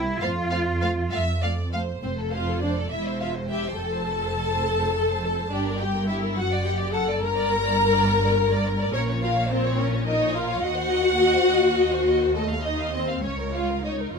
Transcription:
0.00 0.12 C2 medium
0.00 0.21 E4 medium
0.21 1.01 F2 medium
0.21 0.31 A3 medium
0.21 1.12 F4 medium
0.21 0.29 C5 medium
0.21 0.29 F5 medium
0.51 0.60 A3 medium
0.51 0.59 C5 medium
0.51 0.59 F5 soft
0.80 0.90 A3 medium
0.80 0.88 C5 soft
0.80 0.90 F5 medium
1.10 1.92 F2 medium
1.10 1.21 A3 medium
1.10 1.39 E5 medium
1.10 1.20 F5 medium
1.41 1.51 A3 medium
1.41 1.72 D5 medium
1.41 1.50 F5 medium
1.72 1.82 A3 medium
1.72 2.01 C5 medium
1.72 1.80 F5 soft
2.02 2.87 F1 medium
2.02 2.87 F2 medium
2.02 2.12 C4 medium
2.02 2.10 C5 medium
2.02 2.16 C5 soft
2.17 2.32 A4 soft
2.31 2.62 F4 medium
2.31 2.46 C5 soft
2.31 2.61 F5 medium
2.47 2.62 A4 soft
2.60 2.70 D4 medium
2.60 2.75 C5 soft
2.60 2.90 D5 medium
2.76 2.91 A4 soft
2.90 3.78 E1 medium
2.90 3.78 E2 medium
2.90 3.20 E4 medium
2.90 3.20 E5 medium
2.90 3.04 E5 soft
3.05 3.20 C5 soft
3.20 3.30 F4 medium
3.20 3.35 E5 soft
3.20 3.28 F5 medium
3.35 3.49 C5 soft
3.50 3.78 G4 medium
3.50 3.63 E5 soft
3.50 3.78 G5 medium
3.65 3.79 C5 soft
3.78 5.47 F1 medium
3.78 5.48 F2 medium
3.78 3.92 A4 soft
3.78 5.48 A4 medium
3.78 5.51 A5 medium
3.94 4.08 C5 soft
4.09 4.23 A4 soft
4.23 4.37 C5 soft
4.38 4.50 A4 soft
4.52 4.65 C5 soft
4.66 4.80 A4 soft
4.81 4.94 C5 soft
4.95 5.08 A4 soft
5.09 5.22 C5 soft
5.24 5.37 A4 soft
5.37 5.51 C5 soft
5.51 6.35 G1 medium
5.51 6.36 G2 medium
5.51 5.79 D4 medium
5.51 5.65 G4 soft
5.51 5.80 D5 medium
5.66 5.80 A#4 soft
5.78 5.93 G4 soft
5.78 6.09 G4 medium
5.78 6.08 G5 medium
5.94 6.08 A#4 soft
6.08 6.37 E4 medium
6.08 6.21 G4 soft
6.08 6.16 E5 medium
6.22 6.37 A#4 soft
6.36 7.22 F#1 medium
6.36 7.23 F#2 medium
6.36 6.66 F#4 medium
6.36 6.50 F#5 medium
6.36 6.65 F#5 medium
6.51 6.66 D5 soft
6.64 6.94 G4 medium
6.64 6.80 F#5 soft
6.64 6.72 G5 medium
6.78 6.93 D5 soft
6.93 7.22 A4 medium
6.93 7.07 F#5 soft
6.93 7.01 A5 medium
7.08 7.23 D5 soft
7.22 8.94 G1 medium
7.22 8.94 G2 medium
7.22 7.35 A#4 medium
7.22 8.94 A#4 loud
7.22 8.90 A#5 medium
7.36 7.51 D5 soft
7.51 7.65 A#4 soft
7.65 7.79 D5 soft
7.79 7.93 A#4 soft
7.93 8.08 D5 soft
8.08 8.22 A#4 soft
8.22 8.37 D5 soft
8.36 8.50 A#4 soft
8.51 8.66 D5 medium
8.66 8.80 A#4 soft
8.79 8.94 D5 soft
8.93 10.60 A#1 medium
8.93 10.60 A#2 medium
8.93 9.22 C#4 medium
8.93 9.07 A#4 medium
8.93 9.02 C#5 medium
9.08 9.22 C#5 soft
9.22 9.31 F4 medium
9.22 9.36 A#4 soft
9.22 9.50 F5 medium
9.34 9.50 C#5 medium
9.50 9.78 C4 medium
9.50 9.63 A#4 medium
9.50 9.78 C5 medium
9.64 9.78 C#5 soft
9.78 10.07 C#4 medium
9.78 9.92 A#4 medium
9.78 9.87 C#5 medium
9.91 10.06 C#5 soft
10.06 10.35 D#4 medium
10.06 10.19 A#4 medium
10.06 10.34 D#5 medium
10.20 10.35 C#5 soft
10.34 10.63 F4 medium
10.34 10.48 A#4 soft
10.34 10.63 F5 medium
10.48 10.63 C#5 soft
10.62 13.19 D#2 medium
10.62 13.20 D#2 medium
10.62 12.32 F#4 loud
10.62 10.76 D#5 soft
10.62 12.36 F#5 medium
10.76 10.91 C5 soft
10.90 11.05 D#5 soft
11.04 11.20 C5 soft
11.19 11.33 D#5 soft
11.34 11.49 C5 soft
11.48 11.63 D#5 soft
11.61 11.77 C5 soft
11.76 11.90 D#5 soft
11.91 12.06 C5 soft
12.06 12.21 D#5 soft
12.20 12.35 C5 soft
12.34 12.65 A3 medium
12.34 12.43 A4 medium
12.34 12.48 D#5 soft
12.48 12.64 F5 soft
12.62 12.93 D#4 medium
12.62 12.78 D#5 soft
12.62 12.93 D#5 medium
12.78 12.93 F5 soft
12.93 13.23 C4 medium
12.93 13.24 C5 medium
12.93 13.07 D#5 soft
13.08 13.23 F5 soft
13.23 14.13 C#2 medium
13.23 14.14 C#2 medium
13.23 13.32 C#4 medium
13.23 13.37 C#5 soft
13.23 13.53 C#5 medium
13.39 13.53 A#4 soft
13.53 13.82 F4 medium
13.53 13.68 C#5 soft
13.53 13.84 F5 medium
13.69 13.83 A#4 soft
13.83 14.13 D#4 medium
13.83 13.98 C#5 soft
13.83 13.92 D#5 soft
13.99 14.14 A#4 soft
14.13 14.19 F1 soft
14.13 14.19 F2 soft
14.13 14.19 F4 medium
14.13 14.19 C#5 soft
14.13 14.19 F5 medium

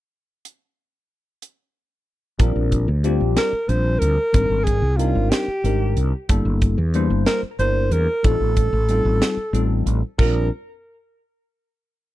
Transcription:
0.45 closed hi-hat medium
1.42 closed hi-hat soft
2.39 2.55 A#1 medium
2.39 2.86 G3 medium
2.39 2.86 C4 medium
2.39 2.86 D4 medium
2.39 2.86 F4 medium
2.39 2.87 A#4 medium
2.39 kick loud
2.39 closed hi-hat medium
2.56 2.86 A#1 medium
2.72 kick medium
2.72 closed hi-hat medium
2.88 3.18 D2 medium
3.04 3.51 G3 medium
3.04 3.51 C4 medium
3.04 3.51 D4 medium
3.04 3.52 F4 medium
3.04 3.52 G4 medium
3.04 closed hi-hat medium
3.20 3.36 A#1 medium
3.37 3.70 A#4 medium
3.37 snare loud
3.37 closed hi-hat medium
3.53 muted fretless electric bass stroke soft
3.68 3.99 A#1 medium
3.68 4.15 G3 medium
3.68 4.16 C4 soft
3.68 4.16 D4 medium
3.68 4.16 F4 medium
3.68 4.00 C5 medium
3.68 4.16 C5 medium
3.68 closed hi-hat medium
3.99 4.17 D2 medium
3.99 4.65 A#4 medium
3.99 closed hi-hat medium
4.33 4.49 G#1 medium
4.33 4.81 G3 medium
4.33 4.81 C4 medium
4.33 4.81 D4 medium
4.33 4.81 D#4 medium
4.33 4.81 A#4 medium
4.33 kick loud
4.33 closed hi-hat medium
4.50 4.81 G#1 medium
4.64 4.98 G#4 medium
4.64 kick medium
4.64 closed hi-hat medium
4.82 5.13 C2 medium
4.97 5.46 G3 medium
4.97 5.46 C4 medium
4.97 5.46 D4 medium
4.97 5.46 D#4 medium
4.97 5.32 F4 medium
4.97 5.47 A#4 medium
4.97 closed hi-hat medium
5.15 5.31 G#1 medium
5.30 6.04 G4 medium
5.30 snare loud
5.30 closed hi-hat medium
5.48 muted fretless electric bass stroke soft
5.64 5.95 G#1 medium
5.64 6.11 G3 medium
5.64 6.11 C4 medium
5.64 6.11 D4 medium
5.64 6.12 D#4 medium
5.64 6.12 A#4 medium
5.64 closed hi-hat medium
5.97 6.12 C2 medium
5.97 closed hi-hat medium
6.29 6.45 G1 medium
6.29 6.76 G3 medium
6.29 6.76 A#3 medium
6.29 6.76 D4 medium
6.29 6.76 E4 medium
6.29 6.77 A4 medium
6.29 kick loud
6.29 closed hi-hat medium
6.45 6.76 G1 medium
6.62 kick medium
6.62 closed hi-hat medium
6.78 7.08 E2 medium
6.94 7.41 G3 medium
6.94 7.41 A#3 medium
6.94 7.42 D4 medium
6.94 7.42 E4 medium
6.94 7.42 C5 medium
6.94 closed hi-hat medium
7.10 7.26 G1 medium
7.26 7.41 A#4 medium
7.26 snare medium
7.26 closed hi-hat medium
7.43 muted fretless electric bass stroke soft
7.59 7.89 G1 medium
7.59 8.06 G3 medium
7.59 8.06 A#3 medium
7.59 8.06 D4 medium
7.59 8.07 E4 medium
7.59 8.07 A#4 medium
7.59 7.94 C5 medium
7.59 closed hi-hat medium
7.91 8.06 E2 medium
7.91 8.26 A#4 medium
7.91 closed hi-hat medium
8.23 8.39 A1 medium
8.23 8.70 G3 medium
8.23 8.71 C4 medium
8.23 8.71 D#4 medium
8.23 8.71 F4 medium
8.23 9.87 A4 medium
8.23 8.71 A4 medium
8.23 kick loud
8.23 closed hi-hat medium
8.40 8.71 A1 medium
8.56 kick medium
8.56 closed hi-hat medium
8.73 9.03 A1 medium
8.89 9.36 G3 medium
8.89 9.36 C4 medium
8.89 9.36 D#4 medium
8.89 9.37 F4 medium
8.89 9.37 A4 medium
8.89 closed hi-hat medium
9.05 9.20 A1 medium
9.22 snare loud
9.22 closed hi-hat medium
9.37 muted fretless electric bass stroke soft
9.53 9.84 A1 medium
9.53 10.00 G3 medium
9.53 10.00 C4 medium
9.53 10.00 D#4 medium
9.53 10.01 F4 medium
9.53 10.01 A4 medium
9.53 closed hi-hat medium
9.86 10.01 A1 medium
9.86 closed hi-hat medium
10.18 10.49 A#1 medium
10.18 10.49 G3 medium
10.18 10.49 C4 medium
10.18 10.49 D4 medium
10.18 10.49 F4 medium
10.18 10.49 A#4 medium
10.18 kick loud
10.18 crash medium

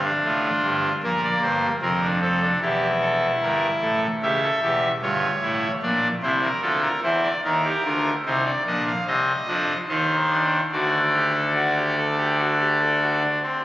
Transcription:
0.00 0.90 D4 medium
0.00 0.13 F5 medium
0.24 0.49 A1 medium
0.24 0.49 A2 medium
0.24 0.93 F4 medium
0.64 0.89 G1 medium
0.64 0.89 G2 medium
1.03 1.28 A#1 medium
1.03 1.28 A#2 medium
1.03 1.72 A#3 medium
1.03 1.21 A#4 medium
1.23 1.41 D5 medium
1.42 1.67 G1 medium
1.42 1.68 G2 medium
1.42 1.68 C5 medium
1.82 2.51 F1 medium
1.82 2.51 F2 medium
1.82 2.00 C4 medium
1.82 2.07 A#4 medium
2.02 2.20 D4 medium
2.22 2.40 C4 medium
2.22 2.47 A4 medium
2.42 2.60 D4 medium
2.61 3.31 E1 medium
2.61 3.31 E2 medium
2.61 4.00 E4 medium
2.61 2.87 G4 medium
3.01 3.27 A4 medium
3.42 3.68 G1 medium
3.42 3.68 G2 medium
3.42 3.68 A#4 medium
3.82 4.07 A1 medium
3.82 4.07 A2 medium
3.82 4.07 A4 medium
4.22 4.48 C#2 medium
4.22 4.48 C#3 medium
4.22 4.40 G4 medium
4.22 4.92 E5 medium
4.43 4.61 A4 medium
4.62 4.87 E1 medium
4.62 4.88 E2 medium
4.62 4.88 G4 medium
5.02 5.28 G1 medium
5.02 5.28 G2 medium
5.02 5.27 F4 medium
5.02 5.72 C#5 medium
5.42 5.67 A1 medium
5.42 5.68 A2 medium
5.42 5.67 E4 medium
5.83 6.08 A#1 medium
5.83 6.08 A#2 medium
5.83 6.08 D4 medium
5.83 6.08 D5 medium
6.23 6.48 C2 medium
6.23 6.48 C3 medium
6.23 6.48 E4 medium
6.23 6.40 C5 medium
6.42 6.60 A#4 medium
6.62 6.88 D2 medium
6.62 6.88 D3 medium
6.62 6.88 F4 medium
6.62 6.80 A4 medium
6.82 7.00 A#4 medium
7.03 7.28 E2 medium
7.03 7.28 E3 medium
7.03 7.28 E4 medium
7.03 7.21 C5 medium
7.23 7.41 D5 medium
7.44 7.69 D#2 medium
7.44 7.69 D#3 medium
7.44 7.62 D#4 medium
7.44 8.14 A#4 medium
7.65 7.82 G4 medium
7.85 8.10 D2 medium
7.85 8.10 D3 medium
7.85 8.10 F4 medium
8.26 8.51 C2 medium
8.26 8.51 C3 medium
8.26 8.51 D#4 medium
8.26 8.43 C5 medium
8.46 8.63 D5 medium
8.66 8.92 A#1 medium
8.66 8.92 A#2 medium
8.66 8.92 D4 medium
8.66 8.84 D#5 medium
8.87 9.04 F5 medium
9.07 9.32 C2 medium
9.07 9.32 C3 medium
9.07 9.32 C4 medium
9.07 9.78 D#5 medium
9.48 9.73 F2 medium
9.48 9.74 F3 medium
9.48 9.74 D4 medium
9.88 10.61 D#2 medium
9.88 10.61 D#3 medium
9.88 10.15 D#4 medium
9.88 10.61 C5 medium
10.31 10.57 D4 medium
10.72 13.23 D2 medium
10.72 13.23 D3 medium
10.72 10.98 F#4 medium
10.72 13.23 D5 medium
11.14 11.32 G4 medium
11.34 11.53 A4 medium
11.55 11.74 F#4 medium
11.76 11.94 G4 medium
11.97 12.15 A4 medium
12.18 12.36 G4 medium
12.38 12.57 F#4 medium
12.59 12.78 G4 medium
12.81 12.99 A4 medium
13.01 13.19 F#4 medium
13.21 13.39 D4 medium
13.43 13.61 C4 medium

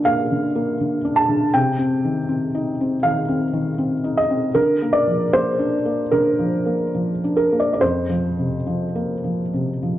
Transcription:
0.00 1.58 A#2 medium
0.00 0.32 D3 soft
0.00 0.06 A#3 soft
0.00 1.05 D4 soft
0.00 1.58 D5 medium
0.05 0.46 A#3 soft
0.05 1.18 F5 medium
0.32 0.72 D3 soft
0.55 0.96 A#3 soft
0.81 1.21 D3 soft
1.05 1.45 D4 soft
1.16 1.54 A5 medium
1.29 1.55 D3 soft
1.54 3.00 C3 medium
1.54 3.04 G5 medium
1.78 2.19 C4 soft
2.05 2.45 D#3 soft
2.29 2.69 C4 soft
2.55 2.94 D#4 soft
2.81 3.20 C4 soft
3.03 3.44 D#3 soft
3.03 4.16 F5 medium
3.28 3.68 C4 soft
3.53 3.94 D#3 soft
3.78 4.19 C4 soft
4.04 4.45 D#4 soft
4.17 4.56 D#5 medium
4.30 4.56 C4 soft
4.55 6.08 D3 soft
4.55 4.94 A#4 medium
4.82 5.24 A#3 soft
4.93 5.33 D5 medium
5.07 5.49 F3 soft
5.33 5.75 A#3 soft
5.33 6.12 C5 medium
5.59 6.01 D4 soft
5.85 6.28 A#3 soft
6.11 7.76 D3 soft
6.11 7.35 A#4 medium
6.39 6.83 F3 soft
6.66 7.11 A#3 soft
6.95 7.40 F3 soft
7.24 7.70 D4 soft
7.37 7.58 A#4 medium
7.52 7.81 A#3 soft
7.60 7.72 D5 medium
7.73 7.81 D5 soft
7.81 9.49 F2 soft
7.81 9.99 C5 medium
8.10 8.55 F3 soft
8.39 8.84 C3 soft
8.67 9.12 F3 soft
8.95 9.41 A#3 soft
9.24 9.70 F3 soft
9.53 9.99 C3 soft
9.83 9.99 F3 soft

